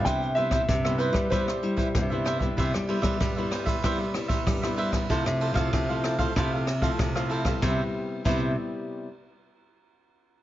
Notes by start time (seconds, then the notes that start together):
Already playing: G3 B3 E4
0.05 C3 E4 B4 C5 E5 G5, kick, cross-stick, closed hi-hat
0.22 closed hi-hat
0.35 G3 B3 E4 B4 C5 E5, closed hi-hat
0.51 E4 B4 C5 E5, kick, cross-stick
0.68 G2 C3, kick, closed hi-hat
0.84 G3 B3 E4 B4 C5 E5, cross-stick
0.98 E4 B4 C5 E5, closed hi-hat
1.13 G3 B3 E4 B4 C5 E5, kick, cross-stick
1.30 C3 G3 B3 E4 B4 C5 E5, kick, closed hi-hat
1.47 C5 E5, cross-stick, closed hi-hat
1.62 G3 E4, closed hi-hat
1.77 E4 B4 C5 E5, kick
1.95 G2 C3, kick, cross-stick, closed hi-hat
2.10 G3 B3 E4 B4 C5 E5
2.25 E4 B4 C5 E5, cross-stick, closed hi-hat
2.39 G3 B3 E4 B4 C5 E5, kick
2.57 C3 E4 B4 C5 E5, kick, ride
2.74 G3, muted cavaquinho stroke, cross-stick
2.88 G3 B3 E4 B4 C5 E5, ride
3.02 G3 B4 C5 E5, kick, cross-stick, ride
3.20 G2 G3, kick, cross-stick, ride
3.36 G3 B3 E4 B4 C5 E5
3.51 E4 B4 C5 E5, cross-stick, ride
3.66 B4 C5 E5, kick, ride
3.83 C3 G3 B3 E4 B4 C5 E5, kick, cross-stick, ride
3.99 B4 C5 E5
4.14 G3 B3 E4, muted cavaquinho stroke, cross-stick, ride
4.28 B4 C5 E5, kick, ride
4.47 G2 G3, kick, cross-stick, ride
4.62 G3 B3 E4 B4 C5 E5, cross-stick
4.77 E4 B4 C5 E5, ride
4.92 B4 C5 E5, kick, cross-stick, ride
5.09 C3 F3 A3 E4 A4 C5 F5, kick, ride
5.26 C3, muted cavaquinho stroke, cross-stick
5.40 E4 A4 C5 F5, ride
5.54 C3 F3 A3 E4 A4 C5 F5, kick, cross-stick, ride
5.73 C3, kick, cross-stick, ride
5.89 F3 A3 E4 A4 C5 F5
6.03 E4 A4 C5 F5, cross-stick, ride
6.18 F3 A3 E4 A4 C5 F5, kick, ride
6.36 C3 F3 A3 E4 A4 C5 F5, kick, cross-stick, ride
6.52 A4 C5 F5
6.67 muted cavaquinho stroke, cross-stick, ride
6.82 F3 A3 E4 A4 C5 F5, kick, ride
6.99 C3, kick, cross-stick, ride
7.15 F3 A3 E4 A4 C5 F5, cross-stick
7.29 E4 A4 C5 F5, ride
7.45 G3 B3 E4 A4 C5 F5, kick, cross-stick, ride
7.61 C3 G3 B3 E4 B4 C5 E5, kick, snare
8.24 C3 G3 B3 E4 B4 C5 E5, kick, crash